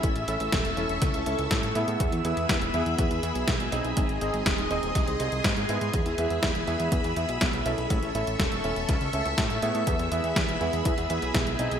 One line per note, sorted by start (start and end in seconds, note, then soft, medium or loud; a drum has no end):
0.00 0.12 A1 loud
0.00 0.25 C#4 medium
0.00 0.25 E4 medium
0.00 0.25 A4 medium
0.00 1.98 A4 medium
0.00 0.25 E5 loud
0.00 1.96 E5 medium
0.00 1.98 C#6 medium
0.00 3.93 E6 medium
0.00 kick loud
0.00 closed hi-hat medium
0.16 0.25 A1 medium
0.16 closed hi-hat soft
0.28 0.37 A1 medium
0.28 0.74 C#4 medium
0.28 0.74 E4 medium
0.28 0.74 A4 medium
0.28 0.74 E5 medium
0.28 closed hi-hat medium
0.40 0.49 A1 medium
0.40 closed hi-hat soft
0.52 0.62 E1 medium
0.52 kick loud
0.52 snare loud
0.52 closed hi-hat medium
0.65 0.74 E1 medium
0.65 closed hi-hat soft
0.77 0.86 E1 medium
0.77 1.24 C#4 medium
0.77 1.24 E4 medium
0.77 1.24 A4 medium
0.77 1.24 E5 loud
0.77 closed hi-hat soft
0.89 0.99 E1 medium
0.89 closed hi-hat soft
1.02 1.11 C#2 loud
1.02 kick loud
1.02 snare soft
1.02 closed hi-hat medium
1.14 1.23 C#2 medium
1.14 closed hi-hat soft
1.26 1.35 C#2 medium
1.26 1.73 C#4 medium
1.26 1.73 E4 medium
1.26 1.73 A4 medium
1.26 1.73 E5 medium
1.26 closed hi-hat medium
1.39 1.48 C#2 medium
1.39 closed hi-hat soft
1.51 1.60 A2 medium
1.51 kick loud
1.51 snare loud
1.51 closed hi-hat medium
1.63 1.72 A2 medium
1.63 closed hi-hat soft
1.75 1.85 A2 medium
1.75 2.22 B3 medium
1.75 2.22 E4 medium
1.75 2.22 G#4 medium
1.75 2.22 E5 loud
1.75 closed hi-hat medium
1.88 1.97 A2 medium
1.88 closed hi-hat soft
2.00 2.09 E2 loud
2.00 7.87 G#4 medium
2.00 3.95 E5 medium
2.00 3.95 B5 medium
2.00 kick loud
2.00 closed hi-hat medium
2.12 2.22 E2 medium
2.12 closed hi-hat soft
2.25 2.34 E2 medium
2.25 2.71 B3 medium
2.25 2.71 E4 medium
2.25 2.71 G#4 medium
2.25 2.71 E5 medium
2.25 closed hi-hat medium
2.37 2.46 E2 medium
2.37 closed hi-hat soft
2.49 2.58 E2 medium
2.49 kick loud
2.49 snare loud
2.49 closed hi-hat medium
2.62 2.71 E1 medium
2.62 closed hi-hat soft
2.74 2.83 E2 medium
2.74 3.20 B3 medium
2.74 3.20 E4 medium
2.74 3.20 G#4 medium
2.74 3.20 E5 loud
2.74 closed hi-hat soft
2.86 2.95 E2 medium
2.86 closed hi-hat soft
2.99 3.08 E2 loud
2.99 kick loud
2.99 closed hi-hat medium
3.11 3.20 E2 medium
3.11 closed hi-hat soft
3.23 3.32 E2 medium
3.23 3.69 B3 medium
3.23 3.69 E4 medium
3.23 3.69 G#4 medium
3.23 3.69 E5 medium
3.23 closed hi-hat medium
3.35 3.45 B1 medium
3.35 closed hi-hat soft
3.48 3.57 B1 medium
3.48 kick loud
3.48 snare loud
3.48 closed hi-hat medium
3.60 3.69 B1 medium
3.60 closed hi-hat soft
3.72 3.81 B1 loud
3.72 4.19 C4 medium
3.72 4.19 D#4 medium
3.72 4.19 G#4 medium
3.72 4.19 D#5 loud
3.72 closed hi-hat medium
3.85 3.94 B1 medium
3.85 closed hi-hat soft
3.97 4.06 G#1 loud
3.97 5.92 D#5 medium
3.97 5.92 C6 medium
3.97 5.92 D#6 medium
3.97 kick loud
3.97 closed hi-hat medium
4.09 4.18 G#1 medium
4.09 closed hi-hat soft
4.21 4.31 G#1 medium
4.21 4.68 C4 medium
4.21 4.68 D#4 medium
4.21 4.68 G#4 medium
4.21 4.68 D#5 medium
4.21 closed hi-hat medium
4.34 4.43 G#1 medium
4.34 closed hi-hat soft
4.46 4.55 D#1 medium
4.46 kick loud
4.46 snare loud
4.46 closed hi-hat medium
4.58 4.68 D#1 medium
4.58 closed hi-hat soft
4.71 4.80 D#1 medium
4.71 5.17 C4 medium
4.71 5.17 D#4 medium
4.71 5.17 G#4 medium
4.71 5.17 D#5 loud
4.71 closed hi-hat soft
4.83 4.92 D#1 medium
4.83 closed hi-hat soft
4.95 5.04 C2 loud
4.95 kick loud
4.95 snare soft
4.95 closed hi-hat medium
5.08 5.17 C2 medium
5.08 closed hi-hat soft
5.20 5.29 C2 medium
5.20 5.66 C4 medium
5.20 5.66 D#4 medium
5.20 5.66 G#4 medium
5.20 5.66 D#5 medium
5.20 closed hi-hat medium
5.32 5.41 C2 medium
5.32 closed hi-hat soft
5.44 5.54 G#2 loud
5.44 kick loud
5.44 snare loud
5.44 closed hi-hat medium
5.57 5.66 G#2 medium
5.57 closed hi-hat soft
5.69 5.78 G#2 medium
5.69 6.15 B3 medium
5.69 6.15 E4 medium
5.69 6.15 G#4 medium
5.69 6.15 E5 loud
5.69 closed hi-hat medium
5.81 5.90 G#2 medium
5.81 closed hi-hat soft
5.94 6.03 E2 loud
5.94 11.79 E5 medium
5.94 7.89 B5 medium
5.94 11.79 E6 loud
5.94 kick loud
5.94 closed hi-hat medium
6.06 6.15 E2 medium
6.06 closed hi-hat soft
6.18 6.27 E2 medium
6.18 6.65 B3 medium
6.18 6.65 E4 medium
6.18 6.65 G#4 medium
6.18 6.65 E5 medium
6.18 closed hi-hat medium
6.30 6.40 E2 medium
6.30 closed hi-hat soft
6.43 6.52 E2 loud
6.43 kick loud
6.43 snare loud
6.43 closed hi-hat medium
6.55 6.64 E1 medium
6.55 closed hi-hat soft
6.67 6.77 E2 medium
6.67 7.14 B3 medium
6.67 7.14 E4 medium
6.67 7.14 G#4 medium
6.67 7.14 E5 loud
6.67 closed hi-hat soft
6.80 6.89 E2 medium
6.80 closed hi-hat soft
6.92 7.01 E2 loud
6.92 kick loud
6.92 closed hi-hat medium
7.04 7.13 E2 medium
7.04 closed hi-hat soft
7.17 7.26 E2 medium
7.17 7.63 B3 medium
7.17 7.63 E4 medium
7.17 7.63 G#4 medium
7.17 7.63 E5 medium
7.17 closed hi-hat medium
7.29 7.38 B1 medium
7.29 closed hi-hat soft
7.41 7.50 B1 loud
7.41 kick loud
7.41 snare loud
7.41 closed hi-hat medium
7.53 7.63 B1 medium
7.53 closed hi-hat soft
7.66 7.75 B1 medium
7.66 8.12 C#4 medium
7.66 8.12 E4 medium
7.66 8.12 A4 medium
7.66 8.12 E5 loud
7.66 closed hi-hat medium
7.78 7.87 B1 medium
7.78 closed hi-hat soft
7.90 7.99 A1 loud
7.90 9.85 A4 medium
7.90 9.85 C#6 medium
7.90 kick loud
7.90 closed hi-hat medium
8.03 8.12 A1 medium
8.03 closed hi-hat soft
8.15 8.24 A1 medium
8.15 8.61 C#4 medium
8.15 8.61 E4 medium
8.15 8.61 A4 medium
8.15 8.61 E5 medium
8.15 closed hi-hat medium
8.27 8.36 A1 medium
8.27 closed hi-hat soft
8.40 8.49 E1 loud
8.40 kick loud
8.40 snare loud
8.40 closed hi-hat medium
8.52 8.61 E1 medium
8.52 closed hi-hat soft
8.64 8.73 E1 medium
8.64 9.10 C#4 medium
8.64 9.10 E4 medium
8.64 9.10 A4 medium
8.64 9.11 E5 loud
8.64 closed hi-hat soft
8.76 8.86 E1 medium
8.76 closed hi-hat soft
8.89 8.98 C#2 medium
8.89 kick loud
8.89 snare soft
8.89 closed hi-hat medium
9.01 9.10 C#2 medium
9.01 closed hi-hat soft
9.13 9.22 C#2 medium
9.13 9.60 C#4 medium
9.13 9.60 E4 medium
9.13 9.60 A4 medium
9.13 9.60 E5 medium
9.13 closed hi-hat medium
9.26 9.35 C#2 medium
9.26 closed hi-hat soft
9.38 9.47 A2 loud
9.38 kick loud
9.38 snare loud
9.38 closed hi-hat medium
9.50 9.59 A2 medium
9.50 closed hi-hat soft
9.62 9.72 A2 medium
9.62 10.09 B3 medium
9.62 10.09 E4 medium
9.62 10.09 G#4 medium
9.62 10.09 E5 loud
9.62 closed hi-hat medium
9.75 9.84 A2 medium
9.75 closed hi-hat soft
9.87 9.96 E2 loud
9.87 11.79 G#4 medium
9.87 11.79 B5 medium
9.87 kick loud
9.87 closed hi-hat medium
9.99 10.09 E2 medium
9.99 closed hi-hat soft
10.12 10.21 E2 medium
10.12 10.58 B3 medium
10.12 10.58 E4 medium
10.12 10.58 G#4 medium
10.12 10.58 E5 medium
10.12 closed hi-hat medium
10.24 10.33 E2 medium
10.24 closed hi-hat soft
10.36 10.45 E2 medium
10.36 kick loud
10.36 snare loud
10.36 closed hi-hat medium
10.49 10.58 E1 medium
10.49 closed hi-hat soft
10.61 10.70 E2 medium
10.61 11.07 B3 loud
10.61 11.07 E4 medium
10.61 11.07 G#4 medium
10.61 11.07 E5 loud
10.61 closed hi-hat soft
10.73 10.82 E2 medium
10.73 closed hi-hat soft
10.85 10.94 E2 loud
10.85 kick loud
10.85 closed hi-hat medium
10.98 11.07 E2 medium
10.98 closed hi-hat soft
11.10 11.19 E2 medium
11.10 11.56 B3 medium
11.10 11.56 E4 medium
11.10 11.56 G#4 medium
11.10 11.56 E5 medium
11.10 closed hi-hat medium
11.22 11.32 B1 medium
11.22 closed hi-hat soft
11.35 11.44 B1 loud
11.35 kick loud
11.35 snare loud
11.35 closed hi-hat medium
11.47 11.56 B1 medium
11.47 closed hi-hat soft
11.59 11.68 B1 medium
11.59 11.79 C4 medium
11.59 11.79 D#4 medium
11.59 11.79 G#4 medium
11.59 11.79 D#5 loud
11.59 closed hi-hat medium
11.71 11.79 B1 medium
11.71 closed hi-hat soft